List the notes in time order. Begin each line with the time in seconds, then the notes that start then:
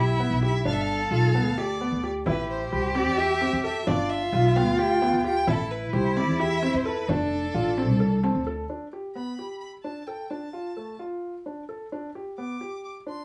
Already playing: B1 E4 G4 E5
0.20 B3
0.30 B1
0.43 G4 E5
0.65 G1 D4 A4 F5
0.73 E5
0.80 F5
1.11 B1 F4 F5
1.35 B3
1.46 D2
1.58 G4 D5
1.81 B3
1.92 D2
2.04 G4
2.26 A1 E4 G4 B4, frame drum
2.50 C5
2.72 C2 G4 C5 B5, frame drum
2.95 C4 D5, frame drum
3.07 E2
3.17 G4 E5
3.41 C4, frame drum
3.53 E2
3.64 A4 E5, frame drum
3.87 G1 D4 F4 D5, frame drum
4.10 E5
4.32 B1 F4, frame drum
4.56 B3 F5 G5, frame drum
4.68 D2
4.78 G4 G5
5.02 B3, frame drum
5.13 D2
5.24 G4 G5, frame drum
5.47 A1 E4 A4, frame drum
5.71 B4
5.93 C2 G4 C5, frame drum
6.17 C4 D5, frame drum
6.28 E2
6.40 G4 E5
6.62 C4, frame drum
6.74 E2 C5
6.85 A4 B4, frame drum
7.08 F1 D4 A4, frame drum
7.54 A1 F4
7.77 C4, frame drum
7.89 C2
8.00 A4
8.23 C4 A5, frame drum
8.35 D2
8.47 A4
8.70 D4
8.93 G4
9.15 B3 B5
9.39 G4
9.60 B5
9.83 D4 A5
10.07 A4 G5
10.30 D4 A5
10.53 F4
10.77 A3
10.99 F4
11.46 D4
11.69 A4
11.92 D4
12.15 G4
12.38 B3 D6
12.61 G4
12.85 D6
13.07 D4 C6